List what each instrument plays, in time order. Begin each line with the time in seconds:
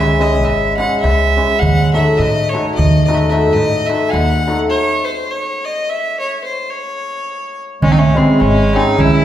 Already playing: upright bass C#2, hammered dulcimer G#3 C#4 E4 G#4, fiddle E5
0.09 darbuka tek
0.19 hammered dulcimer G#3 C#4 E4 G#4, fiddle D#5, darbuka tek
0.44 upright bass G#1, fiddle E5, darbuka tek
0.77 hammered dulcimer G#3 C#4 E4 G#4, fiddle F#5, darbuka tek
1.00 upright bass C#2, fiddle E5, darbuka tek
1.36 hammered dulcimer G#3 C#4 E4 G#4, darbuka tek
1.59 upright bass D#2, fiddle F#5, darbuka dum
1.93 hammered dulcimer A3 D#4 F#4 A4, fiddle E5, darbuka tek
2.09 darbuka tek
2.17 upright bass A2, fiddle D#5
2.22 darbuka tek
2.49 hammered dulcimer A3, fiddle C#5
2.54 hammered dulcimer D#4 F#4 A4, darbuka tek
2.74 upright bass D#2, fiddle D#5
2.79 darbuka dum
2.95 darbuka tek
3.04 hammered dulcimer A3 D#4, fiddle D#5
3.09 hammered dulcimer F#4 A4, darbuka tek
3.14 fiddle D#5 E5
3.21 darbuka tek
3.29 hammered dulcimer A3 D#4 F#4 A4, fiddle E5, darbuka tek
3.53 upright bass A2, fiddle D#5, darbuka tek
3.86 hammered dulcimer A3 D#4 F#4 A4, fiddle E5, darbuka tek
4.08 fiddle F#5 G#5
4.13 upright bass D#2, darbuka tek
4.47 hammered dulcimer A3 D#4 F#4 A4, darbuka tek
4.70 fiddle C#5
5.05 fiddle C5
5.31 fiddle C#5
5.65 fiddle D#5
5.89 fiddle E5
6.20 fiddle C#5
6.44 fiddle C5
6.69 fiddle C#5
7.82 upright bass C#2, clarinet G#3, fiddle C#4, darbuka dum
7.90 clarinet C4, fiddle D#4
7.98 clarinet A3, fiddle C#4
8.15 hammered dulcimer G#3 C#4 E4 G#4, clarinet G#3, fiddle C4, darbuka tek
8.28 darbuka tek
8.40 upright bass G#1, clarinet G#3, fiddle C#4, darbuka tek
8.73 hammered dulcimer G#3 C#4 E4 G#4, clarinet C4, fiddle D#4, darbuka tek
8.98 upright bass C#2, clarinet C#4, fiddle E4, darbuka dum
9.13 darbuka tek